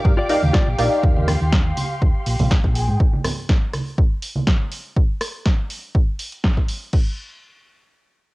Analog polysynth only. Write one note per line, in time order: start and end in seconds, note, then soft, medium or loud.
0.05 0.12 D#4 medium
0.05 0.12 G4 medium
0.05 0.12 A#4 medium
0.05 0.12 D5 medium
0.05 0.13 F5 medium
0.29 0.41 D#4 medium
0.29 0.41 G4 medium
0.29 0.41 A#4 medium
0.29 0.41 D5 medium
0.29 0.42 F5 medium
0.78 1.28 D#4 medium
0.78 1.28 G4 medium
0.78 1.28 A#4 medium
0.78 1.28 D5 medium
0.78 1.28 F5 medium